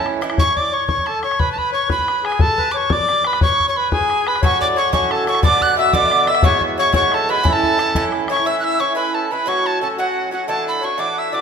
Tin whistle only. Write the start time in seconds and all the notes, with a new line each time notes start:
0.39 C#6
0.57 D6
0.73 C#6
0.87 C#6
1.06 A5
1.23 C#6
1.39 B5
1.52 A5
1.58 B5
1.74 C#6
1.91 B5
2.26 G#5
2.41 A5
2.72 D6
2.77 C#6
2.93 D6
3.27 B5
3.43 C#6
3.69 C#6
3.77 B5
3.92 G#5
4.28 B5
4.44 C#6
4.61 D6
4.78 C#6
4.93 C#6
5.11 A5
5.28 C#6
5.43 D6
5.62 F#6
5.79 E6
5.93 D6
6.28 E6
6.44 C#6
6.79 C#6
6.95 C#6
7.14 A5
7.30 B5
7.48 B5
7.53 A5
8.32 C#6
8.46 E6
8.60 F#6
8.64 E6
8.80 C#6
8.96 B5
9.14 A5
9.32 B5
9.48 C#6
9.66 A5
9.82 A5
9.98 F#5
10.33 F#5
10.48 A5
10.68 B5
10.85 C#6
10.99 D6
11.19 E6
11.34 D6